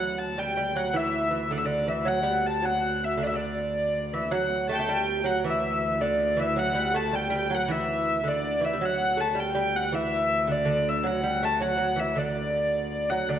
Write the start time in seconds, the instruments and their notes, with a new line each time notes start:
Already playing: viola da gamba D2, lute F#3, hurdy-gurdy F#5
0.19 hurdy-gurdy A5
0.38 lute G3, hurdy-gurdy G5
0.57 lute G3
0.76 lute F#3, hurdy-gurdy F#5
0.93 lute E3, hurdy-gurdy E5
1.31 lute E3
1.51 lute D3, hurdy-gurdy D5
1.58 hurdy-gurdy E5
1.65 lute D3, hurdy-gurdy D5
1.87 lute E3, hurdy-gurdy E5
2.05 lute F#3, hurdy-gurdy F#5
2.23 lute G3
2.46 hurdy-gurdy A5
2.62 lute F#3, hurdy-gurdy F#5
3.04 hurdy-gurdy E5
3.17 lute D3
3.23 hurdy-gurdy D5 E5
3.33 lute D3, hurdy-gurdy D5
4.13 lute E3, hurdy-gurdy E5
4.31 viola da gamba D2, lute F#3, hurdy-gurdy F#5
4.69 lute A3, hurdy-gurdy G5 A5
4.79 lute A3, hurdy-gurdy A5
4.89 lute G3, hurdy-gurdy G5
5.24 lute F#3, hurdy-gurdy F#5
5.44 lute E3, hurdy-gurdy E5
6.01 lute D3, hurdy-gurdy D5
6.37 lute E3, hurdy-gurdy E5
6.56 lute F#3, hurdy-gurdy F#5
6.75 lute G3
6.94 lute A3, hurdy-gurdy A5
7.13 lute G3, hurdy-gurdy G5
7.30 lute G3
7.35 hurdy-gurdy G5
7.50 lute F#3
7.54 hurdy-gurdy F#5
7.68 lute E3, hurdy-gurdy E5
8.24 lute D3
8.28 hurdy-gurdy D5
8.61 lute E3
8.65 hurdy-gurdy E5
8.73 lute G3
8.80 viola da gamba D2, lute F#3
8.85 hurdy-gurdy F#5
9.17 lute A3, hurdy-gurdy A5
9.35 lute G3
9.40 hurdy-gurdy G5
9.55 lute G3
9.76 hurdy-gurdy F#5
9.92 lute E3, hurdy-gurdy E5
10.47 lute D3
10.52 hurdy-gurdy D5
10.65 lute D3
10.89 hurdy-gurdy E5
11.03 lute F#3, hurdy-gurdy F#5
11.23 lute G3
11.43 lute A3, hurdy-gurdy A5
11.61 lute F#3, hurdy-gurdy F#5
11.78 lute F#3
11.96 lute E3, hurdy-gurdy E5
12.15 lute D3, hurdy-gurdy D5
13.10 lute F#3, hurdy-gurdy F#5
13.29 viola da gamba D2, lute D3, hurdy-gurdy D5